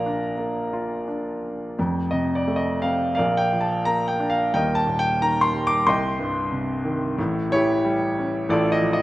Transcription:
Already playing: A#1 A#2 F3 A#3 A#4 D5 F5 A#5
0.06 D4
0.38 A#3
0.73 F4
1.08 D4
1.79 F1 F2
2.11 C3 D#5
2.35 D5
2.47 A3
2.56 D#5
2.81 C4 F5
3.15 A#2 A#4 D5 F5
3.19 A#1
3.37 G5
3.53 F3
3.61 A5
3.85 A#3 A#5
4.08 G5
4.20 D4
4.30 F5
4.54 D#1 D#2 A#4 D#5 G5
4.75 A5
4.87 A#2
4.99 G5
5.22 D#3 A#5
5.41 C6
5.54 G3
5.67 D6
5.87 C2 D#5 G5 C6
6.19 G2
6.52 C3
6.85 D#3
7.18 A1 A2
7.50 E3 E4 C#5
7.55 G4
7.85 G3
8.19 C#4
8.49 A1 A2 F4 A4 D5
8.72 D#5
8.82 F3
8.93 D#5

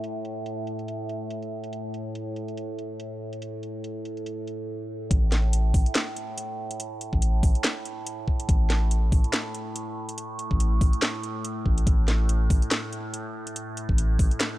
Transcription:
Already playing: A2
0.04 closed hi-hat
0.25 closed hi-hat
0.46 closed hi-hat
0.67 closed hi-hat
0.79 closed hi-hat
0.88 closed hi-hat
1.09 closed hi-hat
1.30 closed hi-hat
1.42 closed hi-hat
1.64 closed hi-hat
1.73 closed hi-hat
1.94 closed hi-hat
2.15 closed hi-hat
2.36 closed hi-hat
2.48 closed hi-hat
2.57 closed hi-hat
2.79 closed hi-hat
3.00 closed hi-hat
3.33 closed hi-hat
3.42 closed hi-hat
3.63 closed hi-hat
3.84 closed hi-hat
4.05 closed hi-hat
4.17 closed hi-hat
4.26 closed hi-hat
4.47 closed hi-hat
5.11 A1 A2, kick, closed hi-hat
5.32 snare, closed hi-hat
5.53 closed hi-hat
5.74 A1, kick, open hi-hat
5.86 closed hi-hat
5.95 snare, clap, closed hi-hat
6.16 closed hi-hat
6.38 closed hi-hat
6.71 closed hi-hat
6.80 closed hi-hat
7.01 closed hi-hat
7.13 A1, kick
7.22 closed hi-hat
7.43 A1, kick, open hi-hat
7.55 closed hi-hat
7.64 snare, clap, closed hi-hat
7.85 closed hi-hat
8.07 closed hi-hat
8.28 kick
8.40 closed hi-hat
8.49 A1, kick, closed hi-hat
8.70 snare, closed hi-hat
8.91 closed hi-hat
9.12 A1, kick, open hi-hat
9.24 closed hi-hat
9.33 snare, clap, closed hi-hat
9.55 closed hi-hat
9.76 closed hi-hat
10.09 closed hi-hat
10.18 closed hi-hat
10.39 closed hi-hat
10.51 A1, kick
10.60 closed hi-hat
10.81 A1, kick, open hi-hat
10.93 closed hi-hat
11.02 snare, clap, closed hi-hat
11.23 closed hi-hat
11.45 closed hi-hat
11.66 A1, kick
11.78 closed hi-hat
11.87 A1, kick, closed hi-hat
12.08 snare, closed hi-hat
12.29 closed hi-hat
12.50 A1, kick, open hi-hat
12.62 closed hi-hat
12.71 snare, clap, closed hi-hat
12.93 closed hi-hat
13.14 closed hi-hat
13.47 closed hi-hat
13.56 closed hi-hat
13.77 closed hi-hat
13.89 A1, kick
13.98 closed hi-hat
14.19 A1, kick, open hi-hat
14.31 closed hi-hat
14.40 snare, clap, closed hi-hat

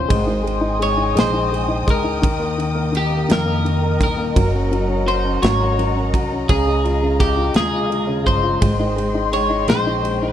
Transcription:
Already playing: G#3 C#4 F4 C5
0.08 G#1 G#3 D#5 G5 G#5 D#6, kick, ride
0.27 D#4
0.43 G#3
0.47 ride
0.61 D#4
0.79 G#3 C#5, ride
0.97 D#4
1.15 A#1 G#3, snare, ride
1.19 C5
1.33 D#4
1.52 G#3, ride
1.68 D#4
1.87 C#2 G#3 A#4, kick, ride
2.04 D#4
2.21 D#2 D#3 A#4 D#5, kick, ride
2.39 A#3
2.58 D#3, ride
2.75 A#3
2.92 D#3, ride
2.97 G4
3.10 A#3
3.28 F2 D#3, snare, ride
3.32 A#4
3.45 A#3
3.65 D#3, ride
3.82 A#3
4.00 D#1 D#3 A#4, kick, ride
4.17 A#3
4.35 F#1 F#3 F#5 A#5, kick, ride
4.54 C#4
4.72 F#3, ride
4.88 C#4
5.06 F#3 C5, ride
5.25 C#4
5.42 G#1 F#3 C#5, snare, ride
5.60 C#4
5.79 F#3, ride
5.96 C#4
6.14 C2 F#3, kick, ride
6.32 C#4
6.48 C#2 C#3 G#3 G#4 F5, kick, ride
6.67 G#3
6.84 F4, ride
7.02 C#3
7.19 G#3 G4, kick, snare, ride
7.37 F4
7.54 D#2 G#3 G#4, snare, ride
7.72 F4
7.90 G#3, ride
8.07 C#3
8.24 G1 G#3 C5, kick, ride
8.43 F4
8.61 G#1 G#3 D#5 G5 C6, kick, ride
8.79 D#4
8.96 G#3, ride
9.14 D#4
9.32 G#3 C#5, ride
9.50 D#4
9.68 A#1 G#3 C5, snare, ride
9.87 D#4
10.03 G#3, ride
10.22 D#4

